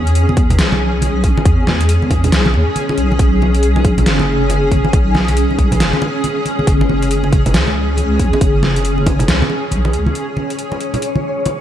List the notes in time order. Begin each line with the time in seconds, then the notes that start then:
Already playing: E2 C#4 G#4
0.07 closed hi-hat
0.15 closed hi-hat
0.29 muted conga, high conga
0.37 kick, closed hi-hat
0.50 closed hi-hat, low conga
0.59 B1, snare, closed hi-hat, muted conga
0.72 high conga
1.02 closed hi-hat, muted conga, high conga
1.24 B1, kick, closed hi-hat
1.37 muted conga, high conga
1.45 E2, kick, closed hi-hat
1.67 snare, high conga
1.81 closed hi-hat, muted conga
1.89 closed hi-hat
2.02 high conga
2.10 E2, kick, closed hi-hat, muted conga
2.24 closed hi-hat, low conga
2.32 B1, snare, closed hi-hat
2.46 high conga
2.54 E2, muted conga
2.76 closed hi-hat, high conga
2.89 muted conga
2.98 B1, closed hi-hat
3.12 high conga
3.19 B1, kick, closed hi-hat
3.42 muted conga, high conga
3.54 closed hi-hat
3.63 closed hi-hat
3.76 muted conga, high conga
3.85 kick, closed hi-hat
3.98 closed hi-hat, low conga
4.06 F#1, snare, closed hi-hat
4.19 muted conga, high conga
4.50 closed hi-hat, muted conga, high conga
4.72 F#1, kick, closed hi-hat
4.85 high conga
4.93 B1, kick, closed hi-hat, muted conga
5.15 snare, high conga
5.28 closed hi-hat, muted conga
5.37 closed hi-hat
5.51 high conga
5.58 B1, kick, closed hi-hat
5.72 closed hi-hat, muted conga, low conga
5.80 F#1, snare, closed hi-hat
5.93 high conga
6.02 muted conga
6.24 closed hi-hat, high conga
6.46 closed hi-hat, muted conga
6.59 high conga
6.67 F#1, kick, closed hi-hat
6.81 muted conga
6.89 high conga
7.02 closed hi-hat
7.11 closed hi-hat
7.23 muted conga, high conga
7.32 kick, closed hi-hat
7.46 closed hi-hat, low conga
7.54 C#2, snare, closed hi-hat, muted conga
7.67 high conga
7.97 closed hi-hat, muted conga, high conga
8.19 C#2, kick, closed hi-hat
8.33 muted conga, high conga
8.41 F#1, kick, closed hi-hat
8.63 snare, high conga
8.76 closed hi-hat, muted conga
8.85 closed hi-hat
8.98 high conga
9.06 F#1, kick, closed hi-hat, muted conga
9.19 closed hi-hat, low conga
9.28 C#2, snare, closed hi-hat
9.42 high conga
9.50 muted conga
9.71 A#1, closed hi-hat, high conga
9.85 muted conga
9.93 C#2, closed hi-hat
10.06 high conga
10.15 C#4 G#4 C#5, closed hi-hat
10.37 muted conga, high conga
10.50 closed hi-hat
10.59 closed hi-hat
10.72 muted conga, high conga
10.80 closed hi-hat
10.94 closed hi-hat, low conga
11.02 closed hi-hat
11.15 muted conga, high conga
11.46 closed hi-hat, muted conga, high conga